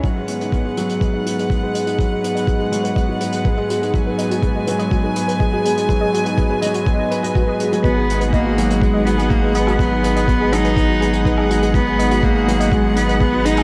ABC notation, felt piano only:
X:1
M:4/4
L:1/16
Q:1/4=123
K:G#m
V:1 name="Felt piano"
F, G, B, D B, G, F, G, B, D B, G, G G, B, D | F, G, B, D B, G, F, G, B, D B, G, G G, B, D | F, G, B, D B, G, F, G, B, D B, G, G G, B, D | F, G, B, D B, G, F, G, B, D B F F G G, F, |
F, G, B, D B, G, F, G, B, D B, G, G G, B, D | F, G, B, D B, G, F, G, B, D B, G, G G, B, D | F, G, B, D B, G, F, G, B, D B, G, G G, B, D |]